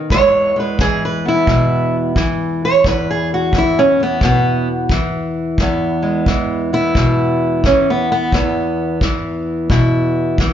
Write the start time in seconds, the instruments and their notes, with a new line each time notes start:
Already playing: steel-string acoustic guitar D#3
0.10 steel-string acoustic guitar E2 E3 C#5, kick
0.15 steel-string acoustic guitar G#3 B3
0.56 steel-string acoustic guitar G#3 B4
0.79 steel-string acoustic guitar E3 G#4, kick
1.05 steel-string acoustic guitar B4
1.25 steel-string acoustic guitar B3 E4
1.47 steel-string acoustic guitar B2, kick
2.16 steel-string acoustic guitar E3, kick
2.65 steel-string acoustic guitar C#5
2.84 steel-string acoustic guitar E2 B4, kick
3.11 steel-string acoustic guitar G#4
3.34 steel-string acoustic guitar F#4
3.53 steel-string acoustic guitar E3, kick
3.58 steel-string acoustic guitar E4
3.79 steel-string acoustic guitar C#4
4.00 steel-string acoustic guitar E3 B3
4.21 steel-string acoustic guitar B2 B3, kick
4.89 steel-string acoustic guitar E3, kick
5.58 steel-string acoustic guitar E2 B3, kick
6.03 steel-string acoustic guitar G#3
6.26 steel-string acoustic guitar E3, kick
6.73 steel-string acoustic guitar B3 E4
6.95 steel-string acoustic guitar B2, kick
7.64 steel-string acoustic guitar E3 C#4, kick
7.90 steel-string acoustic guitar B3
8.12 steel-string acoustic guitar B3
8.32 steel-string acoustic guitar E2 B3, kick
9.01 steel-string acoustic guitar E3, kick
9.70 steel-string acoustic guitar B2 E4, kick
10.38 steel-string acoustic guitar E3, kick